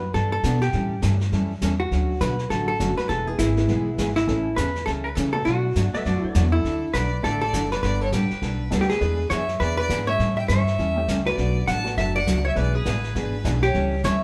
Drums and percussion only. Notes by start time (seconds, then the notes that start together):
0.14 brush sweep, kick, snare
0.44 kick, snare, hi-hat pedal
0.61 snare
0.73 brush sweep, kick, snare
1.02 kick, snare, hi-hat pedal
1.21 snare
1.32 brush sweep, kick, snare
1.62 kick, snare, hi-hat pedal
1.91 brush sweep, kick, snare
2.21 kick, snare, hi-hat pedal
2.39 snare
2.50 brush sweep, kick, snare
2.80 kick, snare, hi-hat pedal
2.98 snare
3.09 brush sweep, kick, snare
3.39 kick, snare, hi-hat pedal
3.57 snare
3.68 brush sweep, kick, snare
3.98 kick, snare, hi-hat pedal
4.16 snare
4.28 brush sweep, kick, snare
4.57 kick, snare, hi-hat pedal
4.75 snare
4.87 brush sweep, kick, snare
5.16 kick, snare, hi-hat pedal
5.46 brush sweep, kick, snare
5.76 kick, snare, hi-hat pedal
5.94 snare
6.05 brush sweep, kick, snare
6.35 kick, snare, hi-hat pedal
6.64 brush sweep, kick, snare
6.94 kick, snare, hi-hat pedal
7.24 brush sweep, kick, snare
7.53 kick, snare, hi-hat pedal
7.72 snare
7.83 brush sweep, kick, snare
8.12 kick, snare, hi-hat pedal
8.31 snare
8.42 brush sweep, kick, snare
8.71 kick, snare, hi-hat pedal
8.81 snare
8.89 snare
8.91 snare
9.01 brush sweep, kick, snare
9.30 kick, snare, hi-hat pedal
9.48 snare
9.60 brush sweep, kick, snare
9.90 kick, snare, hi-hat pedal
10.19 brush sweep, kick, snare
10.49 kick, snare, hi-hat pedal
10.67 snare
10.79 brush sweep, kick, snare
11.08 kick, snare, hi-hat pedal
11.26 snare
11.38 brush sweep, kick, snare
11.68 kick, snare, hi-hat pedal
11.86 snare
11.97 brush sweep, kick, snare
12.27 kick, snare, hi-hat pedal
12.56 brush sweep, kick, snare
12.86 kick, snare, hi-hat pedal
13.04 snare
13.15 brush sweep, kick, snare
13.45 kick, snare, hi-hat pedal
13.63 snare
13.74 brush sweep, kick, snare
14.04 kick, snare, hi-hat pedal